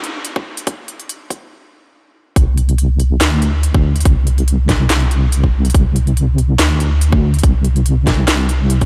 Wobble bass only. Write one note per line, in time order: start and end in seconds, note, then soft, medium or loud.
2.36 3.19 C2 loud
3.21 4.04 D2 loud
4.05 4.88 C2 loud
4.90 5.73 C2 loud
5.75 6.57 C2 loud
6.59 7.42 D2 loud
7.43 8.26 C2 medium
8.28 8.86 C2 loud